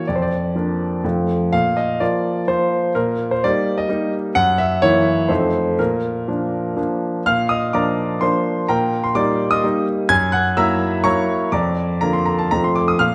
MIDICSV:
0, 0, Header, 1, 2, 480
1, 0, Start_track
1, 0, Key_signature, -2, "major"
1, 0, Tempo, 480000
1, 80, Time_signature, 3, 2, 24, 8
1, 2960, Tempo, 468019
1, 5360, Tempo, 490597
1, 7280, Tempo, 473934
1, 11120, Tempo, 484653
1, 13195, End_track
2, 0, Start_track
2, 0, Title_t, "Grand piano"
2, 0, Program_c, 0, 0
2, 75, Note_on_c, 0, 74, 53
2, 88, Note_on_c, 0, 41, 46
2, 148, Note_off_c, 0, 74, 0
2, 156, Note_on_c, 0, 72, 44
2, 221, Note_on_c, 0, 74, 48
2, 223, Note_off_c, 0, 72, 0
2, 289, Control_c, 0, 64, 127
2, 550, Note_off_c, 0, 41, 0
2, 554, Note_on_c, 0, 53, 34
2, 562, Note_on_c, 0, 58, 36
2, 569, Note_on_c, 0, 62, 35
2, 1000, Note_off_c, 0, 53, 0
2, 1003, Note_off_c, 0, 58, 0
2, 1007, Note_off_c, 0, 62, 0
2, 1042, Note_on_c, 0, 41, 44
2, 1043, Note_off_c, 0, 74, 0
2, 1044, Note_on_c, 0, 57, 33
2, 1045, Note_on_c, 0, 53, 30
2, 1052, Note_on_c, 0, 65, 29
2, 1054, Control_c, 0, 64, 0
2, 1254, Control_c, 0, 64, 127
2, 1491, Note_off_c, 0, 53, 0
2, 1491, Note_off_c, 0, 57, 0
2, 1495, Note_off_c, 0, 65, 0
2, 1515, Note_off_c, 0, 41, 0
2, 1525, Note_on_c, 0, 77, 74
2, 1531, Note_on_c, 0, 46, 50
2, 1545, Control_c, 0, 64, 0
2, 1744, Control_c, 0, 64, 127
2, 1767, Note_on_c, 0, 75, 62
2, 1768, Note_off_c, 0, 77, 0
2, 1995, Note_off_c, 0, 46, 0
2, 2003, Note_on_c, 0, 74, 61
2, 2007, Note_off_c, 0, 75, 0
2, 2009, Note_on_c, 0, 53, 34
2, 2013, Note_on_c, 0, 58, 37
2, 2014, Note_on_c, 0, 65, 42
2, 2022, Control_c, 0, 64, 0
2, 2444, Note_off_c, 0, 53, 0
2, 2446, Note_off_c, 0, 58, 0
2, 2446, Note_off_c, 0, 65, 0
2, 2478, Note_on_c, 0, 53, 39
2, 2480, Note_on_c, 0, 72, 64
2, 2481, Note_off_c, 0, 74, 0
2, 2483, Note_on_c, 0, 58, 36
2, 2491, Note_on_c, 0, 65, 39
2, 2916, Note_off_c, 0, 53, 0
2, 2918, Note_off_c, 0, 58, 0
2, 2922, Note_off_c, 0, 65, 0
2, 2950, Note_on_c, 0, 70, 66
2, 2957, Note_off_c, 0, 72, 0
2, 2957, Note_on_c, 0, 46, 51
2, 3140, Control_c, 0, 64, 127
2, 3317, Note_off_c, 0, 70, 0
2, 3322, Note_on_c, 0, 72, 57
2, 3427, Note_off_c, 0, 46, 0
2, 3442, Note_off_c, 0, 72, 0
2, 3452, Note_on_c, 0, 74, 78
2, 3455, Note_on_c, 0, 55, 41
2, 3456, Control_c, 0, 64, 0
2, 3462, Note_on_c, 0, 58, 45
2, 3467, Note_on_c, 0, 63, 43
2, 3797, Note_on_c, 0, 75, 65
2, 3806, Note_off_c, 0, 74, 0
2, 3886, Note_off_c, 0, 55, 0
2, 3890, Note_off_c, 0, 58, 0
2, 3892, Note_off_c, 0, 63, 0
2, 3913, Note_on_c, 0, 55, 46
2, 3920, Note_on_c, 0, 58, 42
2, 3926, Note_on_c, 0, 63, 46
2, 4157, Note_off_c, 0, 75, 0
2, 4352, Note_off_c, 0, 55, 0
2, 4356, Note_off_c, 0, 58, 0
2, 4359, Note_off_c, 0, 63, 0
2, 4387, Note_on_c, 0, 78, 92
2, 4389, Note_on_c, 0, 42, 60
2, 4575, Control_c, 0, 64, 127
2, 4624, Note_on_c, 0, 76, 80
2, 4631, Note_off_c, 0, 78, 0
2, 4857, Note_off_c, 0, 42, 0
2, 4868, Note_on_c, 0, 73, 93
2, 4869, Note_off_c, 0, 76, 0
2, 4878, Note_on_c, 0, 52, 48
2, 4879, Note_on_c, 0, 58, 47
2, 4886, Note_on_c, 0, 64, 47
2, 5320, Note_off_c, 0, 52, 0
2, 5321, Note_off_c, 0, 58, 0
2, 5324, Note_off_c, 0, 64, 0
2, 5345, Note_on_c, 0, 72, 57
2, 5352, Note_on_c, 0, 41, 53
2, 5353, Note_on_c, 0, 53, 39
2, 5356, Note_off_c, 0, 73, 0
2, 5361, Note_on_c, 0, 57, 42
2, 5361, Note_on_c, 0, 63, 39
2, 5375, Control_c, 0, 64, 0
2, 5534, Control_c, 0, 64, 127
2, 5795, Note_off_c, 0, 53, 0
2, 5799, Note_off_c, 0, 57, 0
2, 5799, Note_off_c, 0, 63, 0
2, 5819, Note_off_c, 0, 41, 0
2, 5830, Note_off_c, 0, 72, 0
2, 5838, Note_on_c, 0, 70, 59
2, 5844, Note_on_c, 0, 46, 48
2, 5853, Control_c, 0, 64, 0
2, 6026, Control_c, 0, 64, 127
2, 6309, Note_off_c, 0, 46, 0
2, 6317, Note_on_c, 0, 58, 37
2, 6319, Note_on_c, 0, 53, 34
2, 6323, Note_on_c, 0, 62, 40
2, 6762, Note_off_c, 0, 58, 0
2, 6763, Note_off_c, 0, 53, 0
2, 6765, Note_off_c, 0, 62, 0
2, 6794, Note_on_c, 0, 53, 37
2, 6797, Note_on_c, 0, 58, 34
2, 6802, Note_on_c, 0, 62, 34
2, 6803, Note_off_c, 0, 70, 0
2, 6818, Control_c, 0, 64, 0
2, 7238, Note_off_c, 0, 53, 0
2, 7239, Note_off_c, 0, 58, 0
2, 7241, Note_off_c, 0, 62, 0
2, 7279, Note_on_c, 0, 89, 83
2, 7280, Note_on_c, 0, 46, 51
2, 7282, Note_on_c, 0, 77, 63
2, 7465, Control_c, 0, 64, 127
2, 7507, Note_off_c, 0, 77, 0
2, 7512, Note_on_c, 0, 87, 67
2, 7522, Note_off_c, 0, 89, 0
2, 7528, Note_on_c, 0, 75, 47
2, 7751, Note_off_c, 0, 46, 0
2, 7752, Note_off_c, 0, 75, 0
2, 7757, Note_on_c, 0, 86, 66
2, 7760, Note_off_c, 0, 87, 0
2, 7765, Note_on_c, 0, 53, 38
2, 7767, Note_on_c, 0, 58, 41
2, 7770, Note_on_c, 0, 82, 52
2, 7771, Note_on_c, 0, 74, 54
2, 7773, Note_on_c, 0, 62, 43
2, 8208, Note_off_c, 0, 53, 0
2, 8209, Note_off_c, 0, 58, 0
2, 8212, Note_off_c, 0, 62, 0
2, 8218, Note_off_c, 0, 74, 0
2, 8218, Note_off_c, 0, 82, 0
2, 8237, Note_on_c, 0, 84, 64
2, 8245, Note_off_c, 0, 86, 0
2, 8246, Note_on_c, 0, 53, 40
2, 8250, Note_on_c, 0, 58, 42
2, 8254, Note_on_c, 0, 72, 49
2, 8257, Note_on_c, 0, 62, 39
2, 8258, Control_c, 0, 64, 0
2, 8687, Note_off_c, 0, 53, 0
2, 8690, Note_off_c, 0, 58, 0
2, 8693, Note_off_c, 0, 62, 0
2, 8699, Note_off_c, 0, 72, 0
2, 8721, Note_on_c, 0, 82, 72
2, 8724, Note_off_c, 0, 84, 0
2, 8728, Note_on_c, 0, 79, 52
2, 8730, Note_on_c, 0, 46, 52
2, 8731, Note_on_c, 0, 70, 52
2, 8941, Control_c, 0, 64, 127
2, 9061, Note_off_c, 0, 79, 0
2, 9062, Note_off_c, 0, 70, 0
2, 9076, Note_on_c, 0, 84, 59
2, 9082, Note_off_c, 0, 82, 0
2, 9191, Note_off_c, 0, 46, 0
2, 9192, Note_on_c, 0, 55, 46
2, 9193, Note_on_c, 0, 86, 81
2, 9194, Note_on_c, 0, 58, 46
2, 9200, Note_off_c, 0, 84, 0
2, 9200, Note_on_c, 0, 63, 43
2, 9206, Note_on_c, 0, 74, 60
2, 9539, Note_off_c, 0, 74, 0
2, 9553, Note_on_c, 0, 87, 73
2, 9558, Note_off_c, 0, 86, 0
2, 9568, Note_on_c, 0, 75, 55
2, 9637, Note_off_c, 0, 55, 0
2, 9638, Note_off_c, 0, 58, 0
2, 9641, Note_off_c, 0, 63, 0
2, 9685, Note_on_c, 0, 55, 42
2, 9687, Note_on_c, 0, 58, 44
2, 9692, Control_c, 0, 64, 0
2, 9693, Note_on_c, 0, 63, 46
2, 9901, Note_off_c, 0, 75, 0
2, 9918, Note_off_c, 0, 87, 0
2, 10122, Note_off_c, 0, 55, 0
2, 10123, Note_off_c, 0, 58, 0
2, 10126, Note_off_c, 0, 63, 0
2, 10144, Note_on_c, 0, 92, 99
2, 10150, Note_on_c, 0, 42, 61
2, 10154, Note_on_c, 0, 80, 71
2, 10354, Control_c, 0, 64, 127
2, 10378, Note_on_c, 0, 90, 74
2, 10379, Note_off_c, 0, 80, 0
2, 10389, Note_on_c, 0, 78, 60
2, 10391, Note_off_c, 0, 92, 0
2, 10616, Note_off_c, 0, 78, 0
2, 10618, Note_off_c, 0, 42, 0
2, 10628, Note_off_c, 0, 90, 0
2, 10628, Note_on_c, 0, 54, 50
2, 10629, Note_on_c, 0, 88, 85
2, 10634, Note_on_c, 0, 58, 51
2, 10634, Note_on_c, 0, 82, 67
2, 10638, Note_on_c, 0, 64, 57
2, 10638, Note_on_c, 0, 76, 74
2, 11075, Note_off_c, 0, 54, 0
2, 11078, Note_off_c, 0, 58, 0
2, 11080, Note_off_c, 0, 64, 0
2, 11084, Note_off_c, 0, 82, 0
2, 11087, Note_off_c, 0, 76, 0
2, 11102, Note_on_c, 0, 85, 85
2, 11109, Note_on_c, 0, 54, 45
2, 11111, Note_on_c, 0, 82, 61
2, 11112, Note_on_c, 0, 58, 48
2, 11116, Note_off_c, 0, 88, 0
2, 11116, Note_on_c, 0, 73, 62
2, 11119, Note_on_c, 0, 64, 50
2, 11130, Control_c, 0, 64, 0
2, 11551, Note_off_c, 0, 54, 0
2, 11553, Note_off_c, 0, 58, 0
2, 11557, Note_off_c, 0, 64, 0
2, 11558, Note_off_c, 0, 82, 0
2, 11561, Note_off_c, 0, 73, 0
2, 11581, Note_on_c, 0, 86, 68
2, 11584, Note_on_c, 0, 41, 58
2, 11588, Note_off_c, 0, 85, 0
2, 11591, Note_on_c, 0, 82, 49
2, 11598, Note_on_c, 0, 74, 52
2, 11788, Control_c, 0, 64, 127
2, 12044, Note_off_c, 0, 82, 0
2, 12047, Note_off_c, 0, 74, 0
2, 12059, Note_off_c, 0, 41, 0
2, 12066, Note_on_c, 0, 82, 75
2, 12073, Note_off_c, 0, 86, 0
2, 12073, Note_on_c, 0, 50, 39
2, 12080, Note_on_c, 0, 58, 41
2, 12084, Note_on_c, 0, 65, 45
2, 12189, Note_on_c, 0, 84, 59
2, 12194, Note_off_c, 0, 82, 0
2, 12311, Note_on_c, 0, 82, 60
2, 12315, Note_off_c, 0, 84, 0
2, 12436, Note_off_c, 0, 82, 0
2, 12437, Note_on_c, 0, 81, 60
2, 12519, Note_off_c, 0, 50, 0
2, 12522, Note_off_c, 0, 58, 0
2, 12524, Note_off_c, 0, 65, 0
2, 12560, Note_off_c, 0, 81, 0
2, 12562, Note_on_c, 0, 82, 73
2, 12567, Note_on_c, 0, 53, 41
2, 12571, Note_on_c, 0, 41, 56
2, 12573, Control_c, 0, 64, 0
2, 12574, Note_on_c, 0, 57, 38
2, 12583, Note_on_c, 0, 65, 38
2, 12683, Note_off_c, 0, 82, 0
2, 12693, Note_on_c, 0, 84, 58
2, 12791, Control_c, 0, 64, 127
2, 12804, Note_on_c, 0, 86, 69
2, 12808, Note_off_c, 0, 84, 0
2, 12924, Note_off_c, 0, 86, 0
2, 12929, Note_on_c, 0, 87, 58
2, 13005, Note_off_c, 0, 53, 0
2, 13009, Note_off_c, 0, 57, 0
2, 13013, Note_off_c, 0, 65, 0
2, 13033, Note_off_c, 0, 41, 0
2, 13039, Note_on_c, 0, 89, 83
2, 13045, Note_off_c, 0, 87, 0
2, 13045, Note_on_c, 0, 46, 54
2, 13052, Control_c, 0, 64, 0
2, 13054, Note_on_c, 0, 77, 59
2, 13195, Note_off_c, 0, 46, 0
2, 13195, Note_off_c, 0, 77, 0
2, 13195, Note_off_c, 0, 89, 0
2, 13195, End_track
0, 0, End_of_file